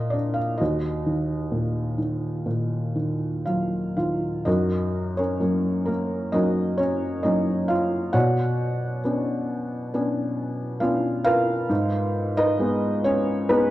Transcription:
0.00 0.57 A#2 medium
0.00 0.56 A#4 soft
0.00 0.14 D#5 medium
0.10 0.59 D4 soft
0.10 0.36 D5 medium
0.34 0.59 F5 medium
0.58 4.43 D#2 medium
0.58 3.43 F#4 soft
0.58 3.42 D#5 medium
1.06 1.97 D#3 soft
1.52 2.45 A#2 soft
1.98 2.94 D#3 soft
2.46 4.42 A#2 soft
2.95 3.95 D#3 soft
3.45 4.43 F#3 soft
3.45 3.95 F4 soft
3.45 3.95 F5 medium
3.97 4.45 D#3 soft
3.97 4.44 F4 soft
3.97 4.47 F5 soft
4.45 8.11 F#2 medium
4.45 5.13 D#4 soft
4.45 5.14 F#4 soft
4.45 5.14 A#4 soft
4.45 5.19 D#5 medium
5.17 5.39 C#4 soft
5.17 5.84 A#4 soft
5.17 5.89 C#5 medium
5.40 6.30 F#3 soft
5.40 5.86 A#3 soft
5.40 6.31 C#4 soft
5.86 6.30 A#3 soft
5.86 6.33 A#4 medium
6.32 7.21 F#3 soft
6.32 7.22 A#3 soft
6.32 6.78 C#4 soft
6.32 6.77 D#4 medium
6.32 6.77 F#4 medium
6.32 6.77 A#4 soft
6.32 6.76 D#5 medium
6.78 7.22 C#4 medium
6.78 7.21 C#5 medium
7.23 8.12 F#3 soft
7.23 8.12 A#3 soft
7.23 8.12 C#4 soft
7.23 7.66 D#4 medium
7.23 7.70 D#5 medium
7.68 8.12 F4 medium
7.68 8.11 F5 medium
8.13 11.65 B2 medium
8.13 9.01 F#4 medium
8.13 9.01 C#5 medium
8.13 9.01 D5 medium
8.13 9.00 F#5 medium
9.04 9.91 B3 soft
9.04 9.91 C#4 soft
9.04 9.91 D4 soft
9.94 10.79 B3 soft
9.94 10.79 C#4 soft
9.94 10.79 D4 medium
10.80 11.67 B3 soft
10.80 11.67 C#4 soft
10.80 11.67 D4 soft
10.80 11.23 F4 medium
10.80 11.23 F5 medium
11.24 12.33 F4 medium
11.24 12.33 A#4 medium
11.24 12.33 B4 medium
11.24 12.40 F5 loud
11.69 13.71 G#2 medium
12.37 13.01 D#4 medium
12.37 13.02 B4 medium
12.37 13.01 D#5 medium
12.59 13.47 G#3 soft
12.59 13.47 B3 medium
13.04 13.47 C#4 medium
13.04 13.51 C#5 medium
13.49 13.71 G#3 medium
13.49 13.71 B3 medium
13.49 13.71 D#4 medium
13.49 13.71 B4 medium

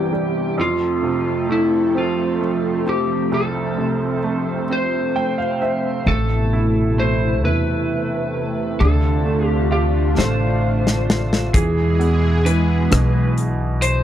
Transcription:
0.00 0.54 G1 soft
0.00 0.60 G2 soft
0.00 0.54 C3 soft
0.00 0.54 E3 medium
0.00 0.55 E3 soft
0.00 0.11 G3 soft
0.00 0.54 G3 medium
0.00 0.56 B3 medium
0.00 0.54 G4 medium
0.00 0.55 G4 medium
0.13 0.57 G3 soft
0.58 3.28 F2 medium
0.58 6.02 F3 medium
0.58 6.02 A3 medium
0.58 6.02 C4 medium
0.58 1.47 F4 medium
0.58 3.29 A4 medium
1.03 2.82 C3 soft
1.49 2.39 A3 soft
1.49 1.98 E4 medium
1.95 2.84 C4 soft
1.95 2.84 F4 medium
2.40 4.19 A3 soft
2.86 4.65 C4 soft
2.86 3.34 G4 medium
3.32 6.02 C2 soft
3.32 5.58 A4 medium
3.32 6.04 C5 medium
3.78 5.57 C3 soft
4.24 5.14 A3 soft
4.70 5.60 C4 soft
4.70 6.12 C5 medium
5.16 6.04 A3 soft
5.16 5.37 G5 medium
5.38 5.59 F5 medium
5.62 6.05 C4 soft
5.62 6.04 E5 soft
6.06 7.44 A1 medium
6.06 8.77 B2 medium
6.06 11.50 C3 medium
6.06 11.50 A3 medium
6.06 6.97 A3 soft
6.06 8.78 E4 medium
6.06 7.01 A4 medium
6.53 7.42 E4 soft
6.98 8.76 A3 medium
6.98 7.41 C5 medium
7.44 8.76 E2 medium
7.44 8.76 E4 soft
7.44 8.85 B4 medium
8.80 10.13 D2 loud
8.80 11.50 D3 medium
8.80 11.51 D4 medium
8.80 11.51 F4 medium
8.80 9.47 A4 medium
9.26 10.16 A3 soft
9.47 9.72 G4 medium
9.72 11.50 F4 medium
9.72 10.19 G4 medium
10.17 11.50 A1 medium
10.17 11.50 A3 medium
10.17 11.51 C5 medium
10.17 snare soft
10.87 snare medium
11.10 snare medium
11.33 snare medium
11.54 12.87 E2 medium
11.54 14.03 B2 medium
11.54 12.44 E3 medium
11.54 14.03 G#3 medium
11.54 14.03 E4 medium
11.54 14.03 G#4 medium
11.54 12.48 G#4 medium
11.54 kick loud
11.54 closed hi-hat medium
11.99 13.78 B3 soft
11.99 closed hi-hat soft
12.45 14.03 E3 medium
12.45 13.33 B4 medium
12.45 closed hi-hat medium
12.91 14.03 B1 medium
12.91 14.03 B2 medium
12.91 cross-stick loud
12.91 closed hi-hat medium
13.38 closed hi-hat medium
13.82 14.03 C5 loud
13.82 closed hi-hat medium

